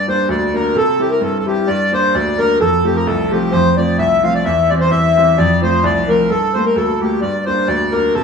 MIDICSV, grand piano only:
0, 0, Header, 1, 2, 480
1, 0, Start_track
1, 0, Tempo, 461538
1, 785, Time_signature, 2, 2, 24, 8
1, 8565, End_track
2, 0, Start_track
2, 0, Title_t, "Grand piano"
2, 0, Program_c, 0, 0
2, 0, Note_on_c, 0, 43, 61
2, 81, Note_on_c, 0, 55, 45
2, 84, Note_on_c, 0, 58, 34
2, 85, Note_on_c, 0, 62, 48
2, 292, Note_off_c, 0, 43, 0
2, 298, Note_on_c, 0, 38, 69
2, 465, Note_off_c, 0, 55, 0
2, 467, Note_off_c, 0, 58, 0
2, 468, Note_off_c, 0, 62, 0
2, 555, Note_on_c, 0, 55, 43
2, 559, Note_on_c, 0, 58, 43
2, 563, Note_on_c, 0, 62, 50
2, 737, Note_off_c, 0, 55, 0
2, 739, Note_off_c, 0, 58, 0
2, 742, Note_off_c, 0, 62, 0
2, 768, Note_off_c, 0, 38, 0
2, 780, Note_on_c, 0, 48, 63
2, 1032, Note_on_c, 0, 55, 43
2, 1038, Note_on_c, 0, 60, 42
2, 1043, Note_on_c, 0, 64, 48
2, 1249, Note_off_c, 0, 48, 0
2, 1256, Note_on_c, 0, 43, 73
2, 1420, Note_off_c, 0, 55, 0
2, 1424, Note_off_c, 0, 60, 0
2, 1427, Note_off_c, 0, 64, 0
2, 1518, Note_on_c, 0, 55, 45
2, 1522, Note_on_c, 0, 60, 38
2, 1528, Note_on_c, 0, 64, 51
2, 1699, Note_off_c, 0, 55, 0
2, 1702, Note_off_c, 0, 60, 0
2, 1705, Note_off_c, 0, 64, 0
2, 1727, Note_off_c, 0, 43, 0
2, 1744, Note_on_c, 0, 43, 74
2, 1994, Note_on_c, 0, 55, 45
2, 2000, Note_on_c, 0, 58, 38
2, 2001, Note_on_c, 0, 62, 50
2, 2212, Note_off_c, 0, 43, 0
2, 2231, Note_on_c, 0, 38, 69
2, 2382, Note_off_c, 0, 55, 0
2, 2386, Note_off_c, 0, 58, 0
2, 2386, Note_off_c, 0, 62, 0
2, 2476, Note_on_c, 0, 55, 41
2, 2482, Note_on_c, 0, 58, 44
2, 2485, Note_on_c, 0, 62, 49
2, 2658, Note_off_c, 0, 55, 0
2, 2662, Note_off_c, 0, 58, 0
2, 2664, Note_off_c, 0, 62, 0
2, 2695, Note_off_c, 0, 38, 0
2, 2713, Note_on_c, 0, 41, 59
2, 2956, Note_on_c, 0, 53, 44
2, 2958, Note_on_c, 0, 57, 41
2, 2962, Note_on_c, 0, 60, 42
2, 3176, Note_off_c, 0, 41, 0
2, 3192, Note_on_c, 0, 36, 74
2, 3343, Note_off_c, 0, 53, 0
2, 3344, Note_off_c, 0, 57, 0
2, 3347, Note_off_c, 0, 60, 0
2, 3446, Note_on_c, 0, 53, 46
2, 3449, Note_on_c, 0, 57, 44
2, 3455, Note_on_c, 0, 60, 46
2, 3656, Note_off_c, 0, 36, 0
2, 3668, Note_on_c, 0, 41, 62
2, 3829, Note_off_c, 0, 53, 0
2, 3831, Note_off_c, 0, 57, 0
2, 3834, Note_off_c, 0, 60, 0
2, 3920, Note_on_c, 0, 53, 43
2, 3923, Note_on_c, 0, 60, 43
2, 3925, Note_on_c, 0, 57, 43
2, 4134, Note_off_c, 0, 41, 0
2, 4146, Note_on_c, 0, 36, 64
2, 4306, Note_off_c, 0, 53, 0
2, 4308, Note_off_c, 0, 60, 0
2, 4309, Note_off_c, 0, 57, 0
2, 4401, Note_on_c, 0, 53, 39
2, 4405, Note_on_c, 0, 57, 40
2, 4408, Note_on_c, 0, 60, 49
2, 4582, Note_off_c, 0, 53, 0
2, 4584, Note_off_c, 0, 57, 0
2, 4586, Note_off_c, 0, 60, 0
2, 4613, Note_off_c, 0, 36, 0
2, 4634, Note_on_c, 0, 40, 62
2, 4896, Note_on_c, 0, 52, 50
2, 4897, Note_on_c, 0, 55, 37
2, 4900, Note_on_c, 0, 60, 47
2, 5090, Note_off_c, 0, 40, 0
2, 5106, Note_on_c, 0, 40, 64
2, 5275, Note_off_c, 0, 52, 0
2, 5276, Note_off_c, 0, 55, 0
2, 5278, Note_off_c, 0, 60, 0
2, 5367, Note_on_c, 0, 52, 46
2, 5372, Note_on_c, 0, 55, 44
2, 5376, Note_on_c, 0, 60, 53
2, 5545, Note_off_c, 0, 52, 0
2, 5548, Note_off_c, 0, 55, 0
2, 5550, Note_off_c, 0, 60, 0
2, 5572, Note_off_c, 0, 40, 0
2, 5599, Note_on_c, 0, 41, 75
2, 5843, Note_on_c, 0, 53, 41
2, 5847, Note_on_c, 0, 57, 45
2, 5851, Note_on_c, 0, 60, 50
2, 6059, Note_off_c, 0, 41, 0
2, 6070, Note_on_c, 0, 36, 76
2, 6227, Note_off_c, 0, 53, 0
2, 6229, Note_off_c, 0, 57, 0
2, 6232, Note_off_c, 0, 60, 0
2, 6321, Note_on_c, 0, 53, 48
2, 6329, Note_on_c, 0, 57, 38
2, 6333, Note_on_c, 0, 60, 51
2, 6501, Note_off_c, 0, 53, 0
2, 6506, Note_off_c, 0, 57, 0
2, 6508, Note_off_c, 0, 60, 0
2, 6534, Note_off_c, 0, 36, 0
2, 6552, Note_on_c, 0, 43, 60
2, 6811, Note_on_c, 0, 55, 47
2, 6813, Note_on_c, 0, 57, 41
2, 6820, Note_on_c, 0, 58, 53
2, 7015, Note_off_c, 0, 43, 0
2, 7027, Note_on_c, 0, 38, 61
2, 7191, Note_off_c, 0, 55, 0
2, 7192, Note_off_c, 0, 57, 0
2, 7197, Note_off_c, 0, 58, 0
2, 7284, Note_on_c, 0, 55, 50
2, 7290, Note_on_c, 0, 58, 49
2, 7292, Note_on_c, 0, 57, 39
2, 7462, Note_off_c, 0, 55, 0
2, 7466, Note_off_c, 0, 58, 0
2, 7467, Note_off_c, 0, 57, 0
2, 7492, Note_off_c, 0, 38, 0
2, 7510, Note_on_c, 0, 43, 68
2, 7767, Note_on_c, 0, 55, 43
2, 7771, Note_on_c, 0, 58, 45
2, 7774, Note_on_c, 0, 62, 51
2, 7973, Note_off_c, 0, 43, 0
2, 7986, Note_on_c, 0, 38, 71
2, 8148, Note_off_c, 0, 55, 0
2, 8150, Note_off_c, 0, 58, 0
2, 8152, Note_off_c, 0, 62, 0
2, 8244, Note_on_c, 0, 55, 45
2, 8249, Note_on_c, 0, 58, 40
2, 8251, Note_on_c, 0, 62, 53
2, 8421, Note_off_c, 0, 55, 0
2, 8425, Note_off_c, 0, 58, 0
2, 8426, Note_off_c, 0, 62, 0
2, 8450, Note_off_c, 0, 38, 0
2, 8475, Note_on_c, 0, 48, 69
2, 8565, Note_off_c, 0, 48, 0
2, 8565, End_track
0, 0, End_of_file